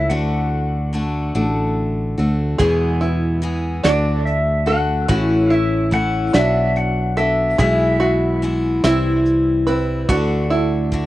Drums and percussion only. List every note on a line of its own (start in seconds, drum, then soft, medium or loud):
2.59 kick medium
2.59 closed hi-hat medium
3.01 closed hi-hat soft
3.42 closed hi-hat soft
3.84 snare medium
3.84 closed hi-hat medium
4.26 closed hi-hat soft
4.68 closed hi-hat soft
5.09 kick medium
5.09 closed hi-hat medium
5.51 closed hi-hat soft
5.92 kick medium
5.92 closed hi-hat soft
6.34 snare medium
6.34 closed hi-hat medium
6.76 closed hi-hat soft
7.17 closed hi-hat soft
7.59 kick medium
7.59 closed hi-hat medium
8.00 closed hi-hat soft
8.42 closed hi-hat soft
8.84 snare medium
8.84 closed hi-hat medium
9.25 closed hi-hat soft
9.67 closed hi-hat soft
10.09 kick medium
10.09 closed hi-hat medium
10.50 closed hi-hat soft
10.92 kick medium
10.92 closed hi-hat soft